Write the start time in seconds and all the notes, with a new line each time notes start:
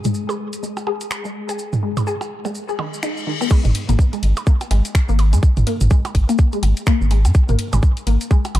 Already playing: G#3 G#4
0.04 G#3, closed hi-hat, mid tom, maracas
0.14 maracas
0.29 G#4, percussion blips, maracas
0.53 closed hi-hat, maracas
0.63 G#3, maracas
0.77 percussion blips, maracas
0.87 G#4, percussion blips
1.01 closed hi-hat, maracas
1.11 finger snap, percussion blips, maracas
1.25 G#3, maracas
1.49 G#4, closed hi-hat, maracas
1.59 maracas
1.73 mid tom, maracas
1.83 G#3
1.97 closed hi-hat, mid tom, percussion blips, maracas
2.07 G#4, maracas
2.21 percussion blips, maracas
2.45 G#3, percussion blips, maracas
2.55 reverse cymbal, maracas
2.69 G#4, maracas
2.79 D#3, percussion blips
2.94 maracas
3.03 D#4, finger snap, maracas
3.17 maracas
3.27 D#3
3.41 B3, percussion blips, maracas
3.50 G#3, kick, crash, percussion blips, maracas
3.65 G#1, closed hi-hat, mid tom, maracas
3.75 open hi-hat, ride
3.89 G#1 A#3, closed hi-hat, mid tom, maracas
3.99 kick, maracas
4.13 G#3, closed hi-hat, maracas
4.23 G#1, open hi-hat, ride
4.37 closed hi-hat, percussion blips, maracas
4.47 A#3, kick, maracas
4.61 closed hi-hat, percussion blips, maracas
4.71 G#1 G#3, open hi-hat, ride, percussion blips
4.85 closed hi-hat, maracas
4.95 finger snap, kick, maracas
5.09 G#1 A#3, maracas
5.19 open hi-hat, ride, percussion blips
5.33 G#2 G#3, closed hi-hat, maracas
5.43 kick, maracas
5.57 G#1, closed hi-hat, mid tom, maracas
5.67 A#3, open hi-hat, ride
5.81 G#1, closed hi-hat, mid tom, maracas
5.90 G#3, kick, maracas
6.05 closed hi-hat, percussion blips, maracas
6.15 G#1, kick, open hi-hat, ride
6.29 A#3, closed hi-hat, percussion blips, maracas
6.38 kick, maracas
6.52 G#3, closed hi-hat, maracas
6.63 G#1, open hi-hat, ride, percussion blips
6.77 closed hi-hat, maracas
6.86 A#3, finger snap, kick, percussion blips, maracas
7.01 G#1, maracas
7.11 G#3, open hi-hat, ride
7.25 G#2, closed hi-hat, percussion blips, maracas
7.34 kick, maracas
7.49 G#1 A#3, closed hi-hat, mid tom, maracas
7.59 open hi-hat, ride
7.73 G#1 G#3, closed hi-hat, mid tom, percussion blips, maracas
7.83 kick, maracas
7.97 closed hi-hat, maracas
8.07 G#1 A#3, open hi-hat, ride
8.21 closed hi-hat, maracas
8.31 G#3, kick, maracas
8.45 closed hi-hat, percussion blips, maracas
8.55 G#1, open hi-hat, ride, percussion blips